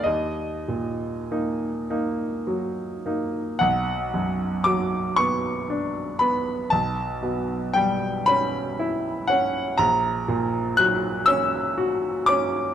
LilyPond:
<<
  \new Staff \with { instrumentName = "Grand piano" } { \time 6/8 \key ees \minor \tempo 4. = 39 ees''4. r4. | \key b \minor fis''4 d'''8 cis'''4 b''8 | a''4 g''8 b''4 fis''8 | ais''4 fis'''8 e'''4 d'''8 | }
  \new Staff \with { instrumentName = "Grand piano" } { \time 6/8 \key ees \minor ees,8 bes,8 <bes ees'>8 <bes ees'>8 ges8 <bes ees'>8 | \key b \minor b,,8 fis,8 fis8 b8 d'8 b8 | b,,8 b,8 g8 cis'8 e'8 cis'8 | ais,,8 ais,8 fis8 cis'8 fis'8 cis'8 | }
>>